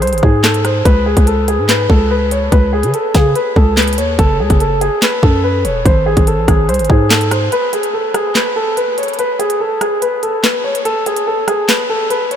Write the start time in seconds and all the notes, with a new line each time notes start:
0.02 C2 C5, closed hi-hat
0.07 closed hi-hat
0.13 G#1, closed hi-hat
0.18 closed hi-hat
0.23 G#2 G#4, kick
0.44 A4, snare, clap, closed hi-hat
0.54 closed hi-hat
0.65 C5, cross-stick, closed hi-hat
0.85 C#2 B4, kick, closed hi-hat
1.06 G#4
1.17 C#2, kick, closed hi-hat
1.27 A4, closed hi-hat
1.48 G#4, closed hi-hat
1.58 G#2
1.69 B4, snare, clap, closed hi-hat
1.90 C#2 A4, kick
2.11 B4
2.31 C#5, closed hi-hat
2.52 C#2 B4, kick, closed hi-hat
2.73 G#4
2.83 C#3, closed hi-hat
2.94 A4, closed hi-hat
3.15 C#3 G#4, kick, snare, closed hi-hat
3.36 B4, closed hi-hat
3.56 C#2 A4, kick
3.77 B4, snare, clap, closed hi-hat
3.82 closed hi-hat
3.88 closed hi-hat
3.93 closed hi-hat
3.98 D#2 C#5, closed hi-hat
4.19 F#1 A4, kick, closed hi-hat
4.40 C#2 G#4
4.50 F#1, kick, closed hi-hat
4.60 A4, closed hi-hat
4.81 G#4, closed hi-hat
5.02 B4, snare, clap, closed hi-hat
5.23 F#2 A4, kick
5.44 B4
5.65 E1 C#5, closed hi-hat
5.86 G#1 C5, kick, closed hi-hat
6.06 G#4
6.17 G#1, kick, closed hi-hat
6.27 A4, closed hi-hat
6.38 A1
6.48 G#1 G#4, kick, cross-stick, closed hi-hat
6.69 C2 C5, closed hi-hat
6.74 closed hi-hat
6.79 G#1, closed hi-hat
6.85 closed hi-hat
6.90 G#2 G#4, kick
7.10 A4, snare, clap, closed hi-hat
7.21 closed hi-hat
7.31 C5, cross-stick, closed hi-hat
7.52 B4, closed hi-hat
7.73 G#4, closed hi-hat
7.83 closed hi-hat
7.94 A4
8.14 G#4, cross-stick, closed hi-hat
8.35 B4, snare, clap
8.56 A4
8.77 B4, closed hi-hat
8.98 C#5, closed hi-hat
9.03 closed hi-hat
9.08 closed hi-hat
9.13 closed hi-hat
9.19 B4, closed hi-hat
9.39 G#4, closed hi-hat
9.50 closed hi-hat
9.60 A4
9.81 G#4, cross-stick, closed hi-hat
10.02 B4, closed hi-hat
10.23 A4, closed hi-hat
10.43 B4, snare, clap
10.64 C#5
10.75 closed hi-hat
10.85 A4, closed hi-hat
11.06 G#4, closed hi-hat
11.16 closed hi-hat
11.27 A4
11.48 G#4, cross-stick, closed hi-hat
11.69 B4, snare, clap
11.90 A4
12.10 B4, closed hi-hat
12.31 C#5, closed hi-hat